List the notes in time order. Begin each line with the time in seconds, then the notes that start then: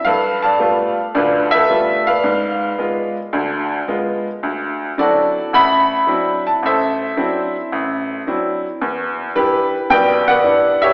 0.05 G2 A4 B4 F5
0.42 D5 F5 A5
0.60 G3 A3 B3 F4
1.15 D2 D3 F4 B4 D5
1.51 A4 B4 E5
1.70 G3 A3 B3 F4
2.07 B4 D5 F5
2.24 G#2
2.78 G#3 B3 F4
3.33 D2 D3
3.88 G#3 B3 F4
4.43 D2
4.98 F#3 C4 D4 E4 F#4 A4 D5
5.53 A1 E5 F#5 B5
6.07 F#3 C4 D4 E4
6.47 A5
6.63 A1 A4 C5 E5
7.17 F#3 C4 D4 E4
7.72 A1
8.27 F#3 C4 D4 E4
8.81 E2
9.35 G3 D4 E4 G4 B4
9.90 B1 B2 B4 D5 G5
10.28 B4 D5 F#5
10.44 G3 D4 E4
10.82 G4 C#5 E5